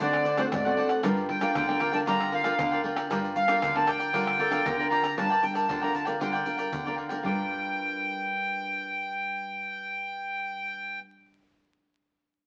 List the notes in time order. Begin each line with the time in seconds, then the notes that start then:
0.00 D3 A3 C4 D4 F#4 C5 D5 F#5, pandeiro, shaker, surdo
0.13 pandeiro, tamborim, shaker
0.25 D4 C5 D5 F#5, pandeiro, shaker
0.37 A3 C4 D4 F#4 C5 D5 F#5, pandeiro, tamborim, shaker
0.52 G#2 A2 D5, pandeiro, tamborim, shaker, surdo
0.65 A3 C4 F#4 C5 D5 F#5, pandeiro, shaker
0.77 D4 C5 D5 F#5, pandeiro
0.89 C5 D5 F#5, pandeiro, tamborim, shaker
1.03 G2 G3 D4 F4 A#4 D5 G5, pandeiro, tamborim, shaker, surdo
1.17 pandeiro, shaker
1.29 G5, pandeiro
1.40 D4 F4 A#4 D5 G5, pandeiro, tamborim, shaker
1.54 D3 F4 A#4 D5 G5, pandeiro, tamborim, shaker, surdo
1.68 D4 F4 A#4 D5 G5, pandeiro, tamborim, shaker
1.79 F4 A#4 D5 G5, pandeiro, tamborim, surdo
1.92 D4 F4 A#4 D5 G5 A5, pandeiro, shaker
2.06 D3 G3 D4 F4 A#4 D5 G5 A#5, pandeiro, shaker, surdo
2.20 pandeiro, tamborim, shaker
2.31 F4 A#4 D5 F5 G5, pandeiro
2.44 D4 F4 A#4 D5 G5, pandeiro, tamborim, shaker
2.59 D3, pandeiro, tamborim, shaker, surdo
2.71 A#4 D5 G5, pandeiro, shaker
2.83 D4 F4 A#4 D5 G5, pandeiro
2.96 A#4 D5 G5, pandeiro, tamborim, shaker
3.10 G2 G3 D4 F4 A#4 D5 G5, pandeiro, tamborim, shaker, surdo
3.24 pandeiro, shaker
3.36 F5, pandeiro, shaker
3.48 D4 F4 A#4 D5 G5, pandeiro, tamborim, shaker
3.61 D3 F4 A#4 D5 G5, pandeiro, tamborim, shaker, surdo
3.75 D4 F4 A#4 D5 G5 A5, pandeiro, tamborim, shaker
3.87 F4 A#4 D5 G5, pandeiro, tamborim, shaker, surdo
3.99 A#4 D5 G5, pandeiro, shaker
4.13 D3 G3 D4 F4 A#4 D5 G5, pandeiro, shaker, surdo
4.27 pandeiro, tamborim, shaker
4.38 F4 A4 A#4 D5 G5, pandeiro
4.51 D4 F4 A#4 D5 G5, pandeiro, tamborim, shaker
4.65 D3 A#4, pandeiro, tamborim, shaker, surdo
4.78 D4 F4 A#4 D5 G5, pandeiro, shaker
4.90 F4 A#4 D5 G5 A#5, pandeiro
5.02 A#4 D5 G5, pandeiro, tamborim, shaker
5.17 G2 G3 D4 F4 A#4 D5 G5 A5, pandeiro, shaker, surdo
5.30 A#4 D5 G5, pandeiro, shaker
5.42 D4 F4 A#4 G5, muted cavaquinho stroke, pandeiro, shaker
5.54 A#4 D5 G5 A5, pandeiro, shaker
5.68 D3 F4 A#4 D5 G5, pandeiro, shaker, surdo
5.81 D4 F4 A#4 D5 G5 A#5, pandeiro, shaker
5.93 A5, muted cavaquinho stroke, pandeiro, shaker
6.05 D4 F4 A#4 D5 G5, pandeiro, shaker
6.19 D3 G3 D4 F4 A#4 D5 G5, pandeiro, shaker, surdo
6.33 A#4 D5 G5, pandeiro, shaker
6.46 D4 F4 A#4, pandeiro, shaker
6.57 A#4 D5 G5, pandeiro, shaker
6.72 D3, pandeiro, shaker, surdo
6.85 D4 F4 A#4 D5 G5, pandeiro, shaker
6.97 F4 A#4 D5 G5, pandeiro
7.09 D4 F4 A#4 D5 G5, pandeiro, shaker
7.23 G2 G3 D4 F4 A#4 D5 G5, surdo
7.27 F4 A#4